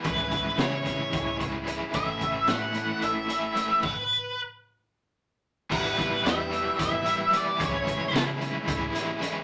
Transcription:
Already playing: E5
0.04 C#2 C#3 E3 G#3 C#4 E4 G#4 B4 C#5 G#5, kick, closed hi-hat
0.31 kick, closed hi-hat
0.58 C#3 E3 G#3 C#4 E4 C#5, snare, closed hi-hat
0.85 C#4 E4, kick, snare, closed hi-hat
0.90 G#3
1.13 C#2, kick, closed hi-hat
1.40 G#3 C#4 E4, kick, closed hi-hat
1.66 E3 G#3 C#4 E4, closed hi-hat
1.93 A1 A2 E3 A3 C#4 E4 A4 C#5 E5 A5, kick, closed hi-hat
2.21 kick, closed hi-hat
2.47 A2 E3 A3 C#4 E4 F#5, snare, closed hi-hat
2.74 A3 C#4 E4, closed hi-hat
3.02 A1 E5, closed hi-hat
3.29 A3 C#4 E4, closed hi-hat
3.55 E3 A3 C#4 E4, closed hi-hat
3.83 B4, kick, crash
5.70 E1 E2 B2 E3 G3 B3 E4 G4 B4 E5 G5, kick, crash
5.98 E3 G3 B3 E4, kick, snare, closed hi-hat
6.23 E2 E3 G3 B3 E4 E5, snare, closed hi-hat
6.50 E2 B2 E3 G3 B3 E4, closed hi-hat
6.78 E1 E3 G3 B3 E4 E5, kick, snare, closed hi-hat
7.05 E3 G3 B3 E4, closed hi-hat
7.32 E2 B2 E3 G3 B3 E4, closed hi-hat
7.36 D5
7.58 C#2 C#3 E3 G#3 C#4 E4 G#4 C#5 G#5, kick, closed hi-hat
7.63 C#5
7.87 G#3 C#4 E4, kick, closed hi-hat
8.13 C#3 E3 G#3 C#4 E4, snare, closed hi-hat
8.41 C#3 E3 G#3 C#4 E4, closed hi-hat
8.67 C#2 E3 G#3 C#4 E4, kick, closed hi-hat
8.95 G#3 C#4 E4, snare, closed hi-hat
9.21 C#3 E3 G#3 C#4 E4, closed hi-hat

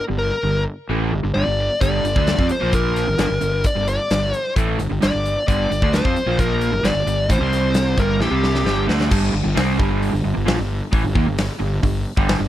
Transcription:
0.09 G1 G2 D3
0.19 A#4
0.43 G1 G2 D3
0.89 A1 A2 E3 A3
1.12 G1 G2 D3
1.23 G1 G2 D3
1.34 G1 G2 D3 D5
1.47 G1 G2 D3
1.81 G1 G2 D3 G3 D5, kick, closed hi-hat
2.04 G1 G2 D3, closed hi-hat
2.16 D2 D3 A3 D4, kick
2.27 snare, closed hi-hat
2.38 F2 F3 C4, kick
2.49 C5, muted overdriven electric guitar stroke, muted fingered electric bass stroke, closed hi-hat
2.61 A#1 A#2 F3 A#3
2.73 A#4, kick, closed hi-hat
2.96 closed hi-hat
3.07 G1 G2 D3
3.18 G1 G2 D3, snare, closed hi-hat
3.30 G1 G2 D3
3.41 G1 G2 D3, closed hi-hat
3.64 D5, kick, closed hi-hat
3.76 G1 G2 D3
3.88 D5, closed hi-hat
4.11 G1 G2 D3, snare, closed hi-hat
4.34 C5, closed hi-hat
4.56 A1 A2 E3 A3, kick, closed hi-hat
4.79 G1 G2 D3, closed hi-hat
4.90 G1 G2 D3
5.02 G1 G2 D3 D5, snare, closed hi-hat
5.13 G1 G2 D3
5.25 closed hi-hat
5.47 G1 G2 D3 G3 D5, kick, closed hi-hat
5.70 G1 G2 D3, closed hi-hat
5.82 D2 D3 A3 D4, kick
5.93 C5, snare, closed hi-hat
6.04 F2 F3 C4, kick
6.15 muted overdriven electric guitar stroke, muted fingered electric bass stroke, closed hi-hat
6.26 A#1 A#2 F3 A#3
6.39 A#4, kick, closed hi-hat
6.61 closed hi-hat
6.72 G1 G2 D3
6.83 G1 G2 D3 D5, snare, closed hi-hat
6.95 G1 G2 D3
7.06 G1 G2 D3, closed hi-hat
7.29 A1 A2 E3 C5, kick, closed hi-hat
7.39 C2 C3 G3 C4
7.53 snare, closed hi-hat
7.74 snare, closed hi-hat
7.97 G1 G2 D3 G3 A#4, kick, closed hi-hat
8.19 A1 A2 E3 G4, snare
8.30 C2 C3 G3 C4
8.43 snare
8.55 snare
8.64 G1 G2 D3 G3, snare
8.87 D2 D3 A3 D4, snare
9.00 snare
9.10 G1 G2 D3 G3, kick, crash
9.33 G1 G2 D3
9.44 G1 G2 D3
9.55 C2 C3 G3 C4, snare, open hi-hat
9.78 G1 G2 D3 G3, kick
10.02 open hi-hat
10.12 G1 G2 D3
10.24 G1 G2 D3
10.34 G1 G2 D3
10.46 A#1 A#2 F3, snare, open hi-hat
10.57 G1 G2 D3
10.92 A1 A2 E3, kick, open hi-hat
11.04 G1 G2 D3
11.15 D#2 D#3 A#3, kick
11.27 G1 G2 D3
11.38 snare, open hi-hat
11.59 G1 G2 D3
11.83 G1 G2 D3, kick, open hi-hat
12.17 G1 G2 D3 G3, kick
12.29 snare, open hi-hat
12.39 G1 G2 D3

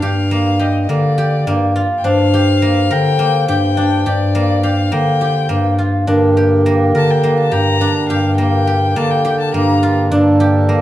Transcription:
Already playing: A#3 D4 A#4 D5
0.02 G2 G4 F5
0.31 A#3
0.59 G4 D#5
0.82 D#5
0.89 D3 A#3 D5
1.18 G4
1.47 G2 A#3
1.76 F4
1.99 G5
2.04 G2 D4 C5 F5
2.34 G4
2.62 A#3
2.91 D3 A#4 G5
3.19 A#3
3.48 G2 G4 G5
3.77 D4
4.06 G2 G4 D5
4.35 A#3
4.63 G4 F5
4.92 D3 A#3 G5
5.21 G4
5.49 G2 A#3
5.79 F4
6.07 G2 D3 A#3 D4 G4 A#4
6.37 G4
6.66 A#3
6.94 D3 A#4 A5
7.11 G5
7.23 A#3
7.40 A5
7.52 G2 G4 A#5
7.81 D4
8.09 G2 G4 F5
8.38 A#3 G5
8.67 G4
8.96 D3 A#3 A5
9.11 G5
9.25 G4
9.41 A5
9.54 G2 A#3 A#5
9.83 F4
10.12 G2 D4 A4 D5
10.40 G4
10.69 A#3

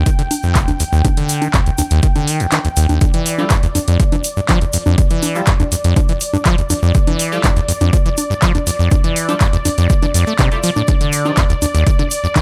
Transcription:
Already playing: G5
0.06 D#3, kick, closed hi-hat, shaker
0.19 D3, closed hi-hat, shaker
0.31 open hi-hat, high conga, shaker
0.43 F2, shaker
0.55 D#1, kick, clap, closed hi-hat, shaker
0.68 D2, closed hi-hat, high conga, shaker
0.80 D#2, open hi-hat, shaker
0.93 D#2, shaker
1.05 kick, closed hi-hat, high conga, shaker
1.17 D3, closed hi-hat, shaker
1.29 open hi-hat, shaker
1.42 D#3, closed hi-hat, high conga, shaker
1.54 F2, kick, clap, closed hi-hat, shaker
1.66 D2, closed hi-hat, shaker
1.78 D#2, open hi-hat, high conga, shaker
1.90 D#2, closed hi-hat, shaker
2.03 D#3, kick, closed hi-hat, shaker
2.16 D3, closed hi-hat, high conga, shaker
2.27 D#3, open hi-hat, shaker
2.40 D2, closed hi-hat, shaker
2.52 D#3, clap, closed hi-hat, high conga, shaker
2.65 D#2, closed hi-hat, shaker
2.76 D#2, open hi-hat, shaker
2.89 D#2, closed hi-hat, high conga, shaker
3.01 D5, kick, closed hi-hat, high conga, shaker
3.13 E3, closed hi-hat, shaker
3.26 open hi-hat, shaker
3.38 F3 G3 E4 F4 A4, high conga, shaker
3.50 G2, kick, clap, closed hi-hat, shaker
3.63 E2, closed hi-hat, shaker
3.75 F2, open hi-hat, high conga, shaker
3.88 F2, closed hi-hat, shaker
4.00 F3, kick, closed hi-hat, shaker
4.12 E3, closed hi-hat, high conga, shaker
4.24 open hi-hat, shaker
4.37 G2, shaker
4.49 F3, kick, clap, closed hi-hat, high conga, shaker
4.61 E2, closed hi-hat, shaker
4.73 F2, open hi-hat, shaker
4.86 F2, high conga, shaker
4.98 kick, closed hi-hat, shaker
5.10 E3, closed hi-hat, shaker
5.23 open hi-hat, high conga, shaker
5.35 F3 G3 E4 F4 A4, shaker
5.46 G2, kick, clap, closed hi-hat, shaker
5.60 E2, closed hi-hat, high conga, shaker
5.72 F2, open hi-hat, shaker
5.84 F2, closed hi-hat, shaker
5.96 F3, kick, closed hi-hat, high conga, shaker
6.08 E3, closed hi-hat, shaker
6.20 open hi-hat, shaker
6.33 G2, high conga, shaker
6.45 F3, kick, clap, closed hi-hat, shaker
6.58 E2, closed hi-hat, shaker
6.70 F2, open hi-hat, high conga, shaker
6.83 F2, shaker
6.94 F2, kick, closed hi-hat, shaker
7.07 E3, closed hi-hat, high conga, shaker
7.19 open hi-hat, shaker
7.32 F3 G3 E4 F4 A4, shaker
7.44 G2, kick, clap, closed hi-hat, high conga, shaker
7.56 E2, closed hi-hat, shaker
7.68 F2, open hi-hat, shaker
7.80 F2, closed hi-hat, high conga, shaker
7.93 F3, kick, closed hi-hat, shaker
8.05 E3, closed hi-hat, shaker
8.17 open hi-hat, high conga, shaker
8.30 G2, shaker
8.42 F3, kick, clap, closed hi-hat, shaker
8.55 E2, closed hi-hat, high conga, shaker
8.67 F2, open hi-hat, shaker
8.79 F2, shaker
8.91 kick, closed hi-hat, high conga, shaker
9.04 E3, closed hi-hat, shaker
9.16 open hi-hat, shaker
9.29 F3 G3 E4 F4 A4, closed hi-hat, high conga, shaker
9.41 G2, kick, clap, closed hi-hat, shaker
9.53 E2, closed hi-hat, shaker
9.65 F2, open hi-hat, high conga, shaker
9.78 F2, closed hi-hat, shaker
9.90 F3, kick, closed hi-hat, shaker
10.02 E3, closed hi-hat, high conga, shaker
10.14 F2, open hi-hat, shaker
10.26 A3, shaker
10.38 C3, kick, clap, closed hi-hat, high conga, shaker
10.52 G3 E4 F4 A4, closed hi-hat, shaker
10.63 F3, open hi-hat, shaker
10.76 A2, high conga, shaker
10.87 D#2, kick, closed hi-hat, high conga, shaker
11.01 D3, closed hi-hat, shaker
11.12 open hi-hat, shaker
11.25 D#3 F3 D4 D#4 G4, high conga, shaker
11.37 F2, kick, clap, closed hi-hat, shaker
11.49 D2, closed hi-hat, shaker
11.62 D#2, open hi-hat, high conga, shaker
11.75 D#2, closed hi-hat, shaker
11.87 D#3, kick, closed hi-hat, shaker
11.99 D3, closed hi-hat, high conga, shaker
12.11 open hi-hat, shaker
12.24 F2, shaker
12.36 D#3, kick, clap, closed hi-hat, high conga, shaker

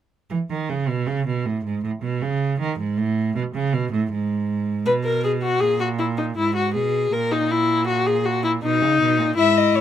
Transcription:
0.30 E3
0.50 D#3
0.69 C#3
0.88 B2
1.07 C#3
1.26 B2
1.46 A2
1.64 G#2
1.83 A2
2.02 B2
2.22 C#3
2.60 D#3
2.79 G#2
2.98 A2
3.35 B2
3.54 C#3
3.73 B2
3.92 A2
4.11 G#2
4.86 B2 B4
5.05 A#4
5.24 G#4
5.43 F#4
5.60 A#2 G#4
5.80 F#4
5.99 E4
6.17 D#4
6.36 G#2 E4
6.56 F#4
6.74 B2 G#4
7.12 A#2 A#4
7.31 D#4
7.50 E4
7.88 F#4
8.06 G#4
8.25 F#4
8.44 E4
8.63 B2 D#4
8.82 C#3
9.00 B2
9.19 A#2
9.37 G#2 E4 E5
9.58 D#5
9.75 A2 C#5

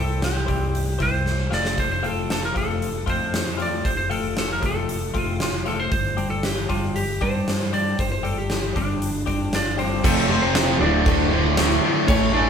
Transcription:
Already playing: C2 C4 E4 G4 C5
0.00 A4
0.22 G4, snare, open hi-hat
0.47 C2 C4 E4 G4 C5, kick, open hi-hat
0.75 open hi-hat
0.99 C2 C4 E4 G4 C5, kick, open hi-hat
1.26 snare
1.51 F1 F3 A3 C4 F4 D5, snare
1.65 snare
1.78 C5, kick, open hi-hat
1.92 C5
2.03 F3 A3 C4 F4 A4, open hi-hat
2.30 A4, snare, open hi-hat
2.45 A#4
2.55 F1 F3 A3 C4 F4 A4, kick, open hi-hat
2.82 open hi-hat
3.06 F2 F3 A3 C4 F4 C5, kick, open hi-hat
3.34 snare, open hi-hat
3.58 F3 A3 C4 F4, open hi-hat
3.62 D5
3.85 F1 C5, kick, open hi-hat
3.97 C5
4.10 F3 A3 C4 F4 A4, open hi-hat
4.37 A4, snare, open hi-hat
4.53 A#4
4.62 F1 F3 A3 C4 F4 A4, kick, open hi-hat
4.89 open hi-hat
5.14 F1 F3 A3 C4 F4, kick, open hi-hat
5.18 F4
5.40 F4, snare, open hi-hat
5.66 F3 A3 C4 F4 A4, open hi-hat
5.80 C5
5.91 G1 C5, kick, open hi-hat
6.17 G3 C4 D4 G4, open hi-hat
6.30 A4
6.43 G4, snare, open hi-hat
6.69 G1 G3 C4 D4 F4 G4, kick, open hi-hat
6.96 G4, open hi-hat
7.21 G2 G3 C4 D4 G4 C5, kick, open hi-hat
7.48 snare, open hi-hat
7.73 G3 C4 D4 G4 D5, open hi-hat
7.99 G1 C5, kick, open hi-hat
8.12 C5
8.23 G3 C4 D4 G4 A4, open hi-hat
8.38 G4
8.50 snare, open hi-hat
8.76 G1 G3 C4 D4 G4, kick, open hi-hat
9.02 open hi-hat
9.26 G1 G3 C4 D4 G4, kick, open hi-hat
9.53 D4 D5, snare, open hi-hat
9.78 G3 C4 D4 G4 C5, open hi-hat
10.04 F1 F2 C3 F3 A3 A4, kick, crash
10.30 F2 C3 F3
10.42 C4 C5
10.54 F2 C3 F3, snare, crash
10.80 D1 D2 A2 D3 D4 D5
11.06 D2 A2 D3, kick, crash
11.32 D2 A2 D3
11.57 D2 A2 D3, snare, crash
11.70 snare
11.82 D2 A2 D3
12.07 A1 A2 E3 A3 C#4 C#5, kick, crash
12.33 A2 E3 A3 D4 D5

